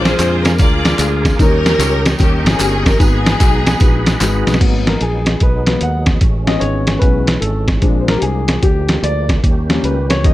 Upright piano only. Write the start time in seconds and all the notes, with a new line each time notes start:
Already playing: A#2 G#3 D4 F4 A#4
0.19 G#3 D4 F4 G#4
0.58 G#3 D4 F4 A#4
0.98 G#3 D4 F4 G#4
1.39 D#3 E3 C#4 D#4 A#4
1.44 G3
1.78 G3 C#4 D#4 C#5
2.18 G3 C#4 D#4 A#4
2.58 G3 C#4 D#4 F#4
2.64 G4
2.99 G#2 G#3 D#4 F#4 B4
3.38 G#3 D#4 F#4 G#4
3.79 G#3 D#4 F#4 B4
4.20 G#3 D#4 F#4 B4
4.60 F#3 A#3 B3
4.87 A#4
5.02 G#4
5.43 B4
5.67 F#3 A#3 B3
5.82 F#5
6.47 G#3 B3 C#4 D#5
6.60 C#5
6.99 G#3 B3 C#4 B4
7.40 A4
7.81 G#3 C4 D4
8.01 C5
8.09 A#4
8.18 G4
8.22 G#4
8.63 G4
9.04 D5
9.69 G3 A#3 C#4
9.85 B4
10.10 C#5
10.24 G3 A#3 C#4 D#5